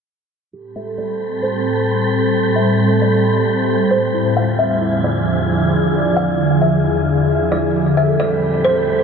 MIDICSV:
0, 0, Header, 1, 5, 480
1, 0, Start_track
1, 0, Key_signature, 0, "minor"
1, 0, Tempo, 451128
1, 564, Time_signature, 4, 2, 24, 8
1, 9613, End_track
2, 0, Start_track
2, 0, Title_t, "Kalimba"
2, 0, Program_c, 0, 108
2, 807, Note_on_c, 0, 76, 68
2, 1034, Note_off_c, 0, 76, 0
2, 1045, Note_on_c, 0, 74, 82
2, 1495, Note_off_c, 0, 74, 0
2, 1519, Note_on_c, 0, 72, 74
2, 2439, Note_off_c, 0, 72, 0
2, 2722, Note_on_c, 0, 76, 73
2, 3174, Note_off_c, 0, 76, 0
2, 3212, Note_on_c, 0, 74, 77
2, 4126, Note_off_c, 0, 74, 0
2, 4161, Note_on_c, 0, 72, 82
2, 4390, Note_off_c, 0, 72, 0
2, 4646, Note_on_c, 0, 77, 88
2, 4873, Note_off_c, 0, 77, 0
2, 4883, Note_on_c, 0, 76, 90
2, 5334, Note_off_c, 0, 76, 0
2, 5365, Note_on_c, 0, 74, 80
2, 6282, Note_off_c, 0, 74, 0
2, 6560, Note_on_c, 0, 77, 88
2, 7013, Note_off_c, 0, 77, 0
2, 7040, Note_on_c, 0, 76, 70
2, 7959, Note_off_c, 0, 76, 0
2, 7999, Note_on_c, 0, 74, 76
2, 8230, Note_off_c, 0, 74, 0
2, 8483, Note_on_c, 0, 76, 70
2, 8711, Note_off_c, 0, 76, 0
2, 8722, Note_on_c, 0, 74, 79
2, 9174, Note_off_c, 0, 74, 0
2, 9198, Note_on_c, 0, 72, 79
2, 9613, Note_off_c, 0, 72, 0
2, 9613, End_track
3, 0, Start_track
3, 0, Title_t, "Harp"
3, 0, Program_c, 1, 46
3, 566, Note_on_c, 1, 67, 94
3, 807, Note_on_c, 1, 69, 75
3, 1043, Note_on_c, 1, 72, 84
3, 1279, Note_off_c, 1, 67, 0
3, 1520, Note_off_c, 1, 69, 0
3, 1524, Note_on_c, 1, 69, 75
3, 1755, Note_off_c, 1, 72, 0
3, 1759, Note_on_c, 1, 72, 83
3, 2233, Note_off_c, 1, 69, 0
3, 2476, Note_off_c, 1, 72, 0
3, 2959, Note_on_c, 1, 69, 80
3, 3929, Note_on_c, 1, 72, 82
3, 4160, Note_on_c, 1, 67, 89
3, 4403, Note_on_c, 1, 64, 91
3, 4649, Note_on_c, 1, 65, 76
3, 4885, Note_on_c, 1, 76, 80
3, 5116, Note_off_c, 1, 64, 0
3, 5121, Note_on_c, 1, 64, 86
3, 5296, Note_off_c, 1, 69, 0
3, 5359, Note_off_c, 1, 65, 0
3, 5363, Note_on_c, 1, 65, 76
3, 5602, Note_on_c, 1, 88, 80
3, 5844, Note_off_c, 1, 64, 0
3, 5848, Note_on_c, 1, 64, 96
3, 6035, Note_off_c, 1, 72, 0
3, 6081, Note_off_c, 1, 65, 0
3, 6086, Note_on_c, 1, 65, 78
3, 6325, Note_on_c, 1, 74, 81
3, 6665, Note_off_c, 1, 67, 0
3, 6718, Note_off_c, 1, 76, 0
3, 6794, Note_off_c, 1, 65, 0
3, 6798, Note_on_c, 1, 65, 77
3, 7043, Note_off_c, 1, 88, 0
3, 7276, Note_off_c, 1, 64, 0
3, 7280, Note_on_c, 1, 64, 96
3, 7764, Note_on_c, 1, 76, 85
3, 7996, Note_off_c, 1, 64, 0
3, 8001, Note_on_c, 1, 64, 81
3, 8247, Note_on_c, 1, 67, 93
3, 8290, Note_off_c, 1, 74, 0
3, 8486, Note_on_c, 1, 69, 74
3, 8722, Note_on_c, 1, 72, 88
3, 8957, Note_off_c, 1, 67, 0
3, 8961, Note_on_c, 1, 67, 91
3, 9198, Note_off_c, 1, 69, 0
3, 9202, Note_on_c, 1, 69, 72
3, 9434, Note_off_c, 1, 72, 0
3, 9438, Note_on_c, 1, 72, 81
3, 9482, Note_off_c, 1, 65, 0
3, 9597, Note_off_c, 1, 76, 0
3, 9613, Note_off_c, 1, 64, 0
3, 9613, Note_off_c, 1, 67, 0
3, 9613, Note_off_c, 1, 69, 0
3, 9613, Note_off_c, 1, 72, 0
3, 9613, End_track
4, 0, Start_track
4, 0, Title_t, "Synth texture"
4, 0, Program_c, 2, 99
4, 563, Note_on_c, 2, 60, 78
4, 565, Note_on_c, 2, 69, 72
4, 565, Note_on_c, 2, 79, 73
4, 565, Note_on_c, 2, 83, 85
4, 4365, Note_off_c, 2, 60, 0
4, 4366, Note_off_c, 2, 69, 0
4, 4366, Note_off_c, 2, 79, 0
4, 4366, Note_off_c, 2, 83, 0
4, 4403, Note_on_c, 2, 65, 76
4, 4404, Note_on_c, 2, 64, 70
4, 4405, Note_on_c, 2, 62, 81
4, 4405, Note_on_c, 2, 80, 88
4, 8205, Note_off_c, 2, 65, 0
4, 8206, Note_off_c, 2, 62, 0
4, 8206, Note_off_c, 2, 64, 0
4, 8206, Note_off_c, 2, 80, 0
4, 8242, Note_on_c, 2, 79, 89
4, 8243, Note_on_c, 2, 60, 81
4, 8243, Note_on_c, 2, 69, 74
4, 8243, Note_on_c, 2, 83, 70
4, 9613, Note_off_c, 2, 60, 0
4, 9613, Note_off_c, 2, 69, 0
4, 9613, Note_off_c, 2, 79, 0
4, 9613, Note_off_c, 2, 83, 0
4, 9613, End_track
5, 0, Start_track
5, 0, Title_t, "Ambient pad"
5, 0, Program_c, 3, 92
5, 565, Note_on_c, 3, 45, 74
5, 565, Note_on_c, 3, 55, 72
5, 565, Note_on_c, 3, 60, 69
5, 565, Note_on_c, 3, 72, 85
5, 4366, Note_off_c, 3, 45, 0
5, 4366, Note_off_c, 3, 55, 0
5, 4366, Note_off_c, 3, 60, 0
5, 4366, Note_off_c, 3, 72, 0
5, 4404, Note_on_c, 3, 40, 76
5, 4405, Note_on_c, 3, 50, 70
5, 4405, Note_on_c, 3, 53, 72
5, 4405, Note_on_c, 3, 68, 86
5, 8206, Note_off_c, 3, 40, 0
5, 8206, Note_off_c, 3, 50, 0
5, 8206, Note_off_c, 3, 53, 0
5, 8206, Note_off_c, 3, 68, 0
5, 8242, Note_on_c, 3, 72, 82
5, 8243, Note_on_c, 3, 45, 75
5, 8243, Note_on_c, 3, 60, 72
5, 8244, Note_on_c, 3, 55, 73
5, 9613, Note_off_c, 3, 45, 0
5, 9613, Note_off_c, 3, 55, 0
5, 9613, Note_off_c, 3, 60, 0
5, 9613, Note_off_c, 3, 72, 0
5, 9613, End_track
0, 0, End_of_file